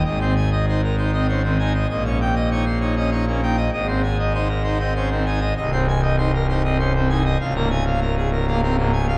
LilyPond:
<<
  \new Staff \with { instrumentName = "Pipe organ" } { \time 3/4 \key aes \major \tempo 4 = 98 <aes, ees''>16 <c' c''>16 aes''16 ees''16 <ees' c''>16 bes'16 <ees' c''>16 <c' ees''>16 <des' c''>16 <ees c'>16 <ees' aes''>16 ees''16 | <bes, ees''>16 <des' des''>16 g''16 ees''16 <ees' des''>16 c''16 <ees' des''>16 <des' ees''>16 <ees' des''>16 <bes des'>16 <ees' g''>16 ees''16 | <aes, ees''>16 <c' c''>16 aes''16 ees''16 <ees' c''>16 bes'16 <ees' c''>16 <c' ees''>16 <des' c''>16 <ees c'>16 <ees' aes''>16 ees''16 | <c, ees''>16 <c' c''>16 aes''16 ees''16 <ees' c''>16 bes'16 <ees' c''>16 <c' ees''>16 <des' c''>16 <c c'>16 <ees' aes''>16 ees''16 |
<des, f''>16 <bes bes'>16 aes''16 f''16 bes'16 aes'16 bes'16 <bes f''>16 <c' bes'>16 <aes, bes>16 aes''16 f''16 | }
  \new Staff \with { instrumentName = "Pipe organ" } { \clef bass \time 3/4 \key aes \major aes,,2. | bes,,2. | aes,,2. | c,,2. |
des,,2. | }
>>